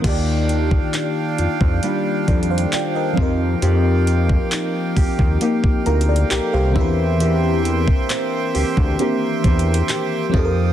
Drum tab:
CC |x-----------------------------------------------|------------------------------------------------|------------------------------------------------|
HH |x-----x-----x-----x-----x-----x-x-x-x-----------|x-----x-----x-----o-----x-----x-x-x-x-----------|x-----x-----x-----o-----x-----x-x-x-x-----------|
CP |------------x-----------------------x-----------|------------x-----------------------x-----------|------------x-----------------------x-----------|
BD |o--------o-----------o--------o-----------o-----|---------o--------o--o-----o--------------o-----|---------o-----------o--------o-----------o-----|